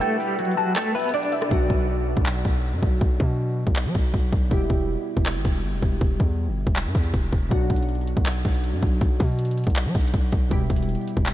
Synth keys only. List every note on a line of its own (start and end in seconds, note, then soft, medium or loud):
0.00 1.46 B2 medium
0.00 1.47 G3 medium
0.00 1.48 E4 medium
0.00 1.48 G4 medium
1.49 4.46 B2 medium
1.49 4.47 F#3 medium
1.49 4.47 D4 medium
1.49 4.48 F#4 medium
4.49 7.46 B2 medium
4.49 7.47 G3 medium
4.49 7.48 E4 medium
4.49 7.48 G4 medium
7.49 10.46 B2 medium
7.49 10.47 F#3 medium
7.49 10.47 D4 medium
7.49 10.48 F#4 medium
10.50 11.34 B2 medium
10.50 11.34 G3 medium
10.50 11.34 E4 medium
10.50 11.34 G4 medium